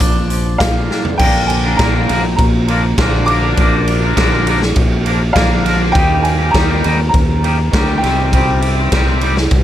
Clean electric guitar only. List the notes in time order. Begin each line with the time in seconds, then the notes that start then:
Already playing: A#2
0.00 D4
0.30 F3
0.60 A#3
0.90 D4
1.19 A#2 D3 F3 A#3 D4 A#4
1.64 F3 A#3 D4 A#4
1.79 A#2 D3 F3 A#3 D4 A#4
1.94 F3 A#3 D4 A#4
2.08 F3 A#3 D4 A#4
2.24 muted clean electric guitar stroke
2.68 F3 A#3 D4 A#4
2.83 muted clean electric guitar stroke
2.98 A#2 D3 F3 A#3 D4 A#4
3.28 F3 A#3 D4 A#4
3.43 F3 A#3 D4 A#4
3.57 A#2 D3 F3 A#3 D4 A#4
4.02 F3 A#3 D4 A#4
4.16 A#2 D3 F3 A#3 D4 A#4
4.31 F3 A#3 D4 A#4
4.46 F3 A#3 D4 A#4
4.61 muted clean electric guitar stroke
5.05 F3 A#3 D4 A#4
5.21 muted clean electric guitar stroke
5.35 A#2 D3 F3 A#3 D4 A#4
5.65 F3 A#3 D4 A#4
5.79 F3 A#3 D4 A#4
5.94 D#3 G3 A#3 D#4 G4
6.39 A#3 D#4 G4
6.53 D#3 G3 A#3 D#4 G4
6.68 A#3 D#4 G4
6.83 G3 A#3 D#4 G4
6.99 muted clean electric guitar stroke
7.43 G3 A#3 D#4 G4
7.58 muted clean electric guitar stroke
7.72 D#3 G3 A#3 D#4 G4
8.02 C3 D#3 G3 C4 G4
8.17 G3 C4 G4
8.32 C3 D#3 G3 C4 G4
8.77 G3 C4 G4
8.92 C3 D#3 G3 C4 G4
9.06 G3 C4 G4
9.22 D#3 G3 C4 G4
9.37 muted clean electric guitar stroke